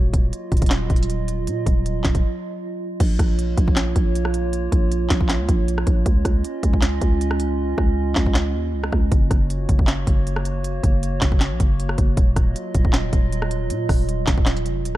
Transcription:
0.00 0.13 D#1 loud
0.00 2.97 F#3 medium
0.00 2.97 F4 medium
0.00 2.97 D#5 medium
0.13 0.32 D#1 loud
0.13 kick loud
0.13 closed hi-hat medium
0.33 closed hi-hat medium
0.52 0.61 D#1 loud
0.52 kick medium
0.52 closed hi-hat soft
0.57 closed hi-hat medium
0.62 0.89 D#1 loud
0.62 kick medium
0.62 closed hi-hat medium
0.66 clap medium
0.66 closed hi-hat medium
0.71 snare loud
0.71 closed hi-hat medium
0.90 1.49 D#1 loud
0.90 kick loud
0.90 closed hi-hat soft
0.96 closed hi-hat medium
1.03 closed hi-hat medium
1.10 closed hi-hat medium
1.28 closed hi-hat medium
1.47 1.65 A#2 loud
1.47 closed hi-hat medium
1.66 2.03 D#1 loud
1.66 kick medium
1.66 closed hi-hat medium
1.86 closed hi-hat medium
2.04 2.14 D#1 loud
2.04 kick loud
2.04 snare loud
2.04 clap medium
2.04 closed hi-hat soft
2.15 2.23 D#1 loud
2.15 kick loud
2.15 closed hi-hat medium
3.00 3.18 A#1 loud
3.00 6.03 A#3 medium
3.00 6.03 F4 medium
3.00 6.03 C#5 medium
3.00 kick loud
3.00 closed hi-hat medium
3.00 crash loud
3.19 3.56 A#1 loud
3.19 kick loud
3.19 cross-stick medium
3.19 closed hi-hat medium
3.39 closed hi-hat medium
3.57 3.94 A#1 loud
3.57 kick loud
3.57 closed hi-hat medium
3.68 kick loud
3.76 snare loud
3.76 clap medium
3.76 closed hi-hat medium
3.96 4.69 A#1 loud
3.96 kick loud
3.96 closed hi-hat medium
4.15 closed hi-hat medium
4.25 cross-stick loud
4.34 closed hi-hat medium
4.53 closed hi-hat medium
4.72 5.09 A#1 loud
4.72 kick loud
4.72 closed hi-hat medium
4.92 closed hi-hat medium
5.10 5.41 A#1 loud
5.10 kick loud
5.10 snare loud
5.10 clap medium
5.10 closed hi-hat medium
5.20 kick loud
5.29 snare loud
5.29 clap loud
5.29 closed hi-hat medium
5.40 5.48 C#2 loud
5.49 5.85 A#1 loud
5.49 kick loud
5.49 closed hi-hat medium
5.68 closed hi-hat medium
5.78 cross-stick loud
5.87 6.05 A#1 loud
5.87 kick medium
5.87 closed hi-hat medium
6.06 6.24 C#2 loud
6.06 9.09 C#4 medium
6.06 9.09 F4 medium
6.06 9.09 D#5 medium
6.06 kick loud
6.06 closed hi-hat medium
6.25 6.43 C#2 loud
6.25 kick loud
6.25 cross-stick medium
6.25 closed hi-hat medium
6.44 closed hi-hat medium
6.63 7.00 C#2 loud
6.63 kick loud
6.63 closed hi-hat medium
6.73 kick loud
6.81 snare loud
6.81 clap medium
6.81 closed hi-hat medium
7.01 7.75 C#2 loud
7.01 kick loud
7.01 closed hi-hat medium
7.21 closed hi-hat medium
7.31 cross-stick loud
7.40 closed hi-hat medium
7.78 8.15 C#2 loud
7.78 kick loud
7.78 cross-stick medium
8.15 8.56 C#2 loud
8.15 kick loud
8.15 snare loud
8.15 clap medium
8.26 kick loud
8.34 snare loud
8.34 clap medium
8.54 8.75 D#2 loud
8.73 8.91 C#2 loud
8.84 cross-stick loud
8.92 9.11 C#2 loud
8.92 kick loud
8.92 cross-stick medium
9.12 9.30 F#1 loud
9.12 12.14 A#3 medium
9.12 12.14 F#4 medium
9.12 12.14 C#5 medium
9.12 kick loud
9.12 closed hi-hat medium
9.31 9.67 F#1 loud
9.31 kick loud
9.31 cross-stick medium
9.31 closed hi-hat medium
9.50 closed hi-hat medium
9.69 10.06 F#1 loud
9.69 kick loud
9.69 closed hi-hat medium
9.79 kick loud
9.87 snare loud
9.87 clap loud
9.87 closed hi-hat medium
10.07 10.81 F#1 loud
10.07 kick loud
10.07 closed hi-hat medium
10.27 closed hi-hat medium
10.36 cross-stick loud
10.45 closed hi-hat medium
10.64 closed hi-hat medium
10.83 11.20 F#1 loud
10.83 kick loud
10.83 closed hi-hat medium
11.03 closed hi-hat medium
11.21 11.53 F#1 loud
11.21 kick medium
11.21 snare loud
11.21 clap medium
11.21 closed hi-hat medium
11.32 kick loud
11.40 snare loud
11.40 clap loud
11.40 closed hi-hat medium
11.51 11.60 A#1 loud
11.60 11.97 F#1 loud
11.60 kick loud
11.60 closed hi-hat medium
11.80 closed hi-hat medium
11.89 cross-stick loud
11.98 12.17 F#1 loud
11.98 kick loud
11.98 closed hi-hat medium
12.17 12.36 D#1 loud
12.17 14.97 F#3 medium
12.17 14.97 F4 medium
12.17 14.97 D#5 medium
12.17 kick loud
12.17 closed hi-hat medium
12.36 12.55 D#1 loud
12.36 kick loud
12.36 cross-stick medium
12.36 closed hi-hat medium
12.56 closed hi-hat medium
12.74 13.11 D#1 loud
12.74 kick loud
12.74 closed hi-hat medium
12.85 kick loud
12.93 snare loud
12.93 clap loud
12.93 closed hi-hat medium
13.13 13.72 D#1 loud
13.13 kick loud
13.13 closed hi-hat medium
13.32 closed hi-hat medium
13.42 cross-stick loud
13.51 closed hi-hat medium
13.70 13.88 A#2 loud
13.70 closed hi-hat medium
13.89 14.26 D#1 loud
13.89 kick loud
13.89 cross-stick medium
13.89 open hi-hat medium
14.09 closed hi-hat medium
14.27 14.67 D#1 loud
14.27 kick medium
14.27 snare loud
14.27 clap medium
14.27 closed hi-hat medium
14.38 kick loud
14.46 snare loud
14.46 clap medium
14.46 closed hi-hat medium
14.57 closed hi-hat medium
14.66 14.86 F1 loud
14.66 closed hi-hat medium
14.85 14.97 D#1 loud
14.85 closed hi-hat medium

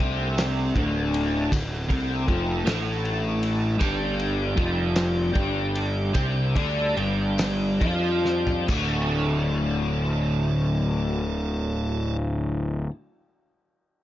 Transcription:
0.00 0.71 C2 medium
0.00 0.74 C3 medium
0.00 3.77 A3 medium
0.00 0.74 C4 loud
0.00 8.66 D4 medium
0.00 3.77 A4 medium
0.00 3.76 F#5 medium
0.00 kick loud
0.00 ride medium
0.38 snare loud
0.38 ride loud
0.38 tambourine medium
0.75 1.48 D1 loud
0.75 1.50 D2 medium
0.75 1.50 D3 medium
0.75 kick loud
0.75 ride medium
1.14 ride medium
1.51 1.87 D1 medium
1.51 1.81 D2 medium
1.51 kick loud
1.51 ride loud
1.51 tambourine loud
1.89 2.25 C2 medium
1.89 2.26 C3 medium
1.89 2.26 C4 loud
1.89 kick loud
1.89 ride medium
1.89 tambourine soft
2.28 2.64 F1 medium
2.28 2.65 F2 medium
2.28 2.65 F3 loud
2.28 kick loud
2.28 ride medium
2.65 3.77 A1 loud
2.65 3.78 A2 loud
2.65 3.79 A3 loud
2.65 snare loud
2.65 ride loud
2.65 tambourine medium
3.05 ride medium
3.43 ride medium
3.78 4.54 G1 medium
3.78 4.55 G2 loud
3.78 4.56 G3 loud
3.78 kick loud
3.78 ride loud
3.78 tambourine loud
3.84 8.67 G3 medium
3.84 8.67 G4 medium
3.84 8.67 D5 medium
4.19 ride medium
4.19 tambourine soft
4.56 5.31 F1 loud
4.56 5.32 F2 medium
4.56 5.33 F3 loud
4.56 kick loud
4.56 ride medium
4.96 snare loud
4.96 ride loud
4.96 tambourine medium
5.33 6.11 G1 loud
5.33 6.12 G2 medium
5.33 6.13 G3 loud
5.33 kick loud
5.33 ride medium
5.75 ride medium
6.13 6.53 C2 medium
6.13 6.53 C3 loud
6.13 6.54 C4 loud
6.13 kick loud
6.13 ride medium
6.13 tambourine loud
6.55 6.94 D2 loud
6.55 6.95 D3 medium
6.55 6.96 D4 medium
6.55 kick loud
6.55 ride medium
6.96 7.77 G1 medium
6.96 7.79 G2 loud
6.96 7.80 G3 loud
6.96 ride medium
6.96 tambourine soft
7.38 snare loud
7.38 ride loud
7.38 tambourine medium
7.80 8.65 F2 loud
7.80 8.67 F3 medium
7.80 8.68 F4 loud
7.80 kick loud
7.80 ride medium
8.03 tambourine soft
8.25 snare medium
8.47 floor tom loud
8.47 tambourine soft
8.67 12.85 D1 medium
8.67 12.89 D2 loud
8.67 12.89 A2 loud
8.67 12.90 D3 loud
8.67 12.90 A3 loud
8.67 kick loud
8.67 crash medium
8.67 tambourine medium
8.71 12.17 A3 medium
8.71 12.17 D4 medium
8.71 12.91 F#4 loud
8.71 12.17 F#4 medium
8.71 12.17 A4 medium

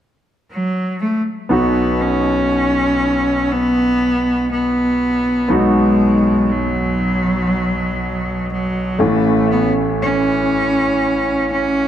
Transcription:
0.52 0.98 F#3 medium
1.01 1.21 A3 soft
1.49 5.46 B1 soft
1.49 5.46 B2 soft
1.49 5.46 B3 soft
1.49 2.03 B3 medium
1.49 5.46 D#4 soft
1.49 5.47 F#4 soft
2.02 3.53 C#4 medium
3.52 4.51 B3 medium
4.51 5.53 B3 medium
5.48 8.96 B1 soft
5.48 8.96 B2 soft
5.48 6.53 G#3 medium
5.48 8.95 B3 soft
5.48 8.96 D#4 soft
5.48 8.97 F#4 soft
6.52 8.51 F#3 medium
8.52 9.03 F#3 medium
8.99 11.88 A1 soft
8.99 11.88 A2 soft
8.99 11.88 E3 soft
8.99 11.88 A3 soft
8.99 9.51 A3 medium
8.99 11.88 C#4 soft
9.52 9.72 B3 medium
10.02 11.47 C#4 medium
11.52 11.88 C#4 medium

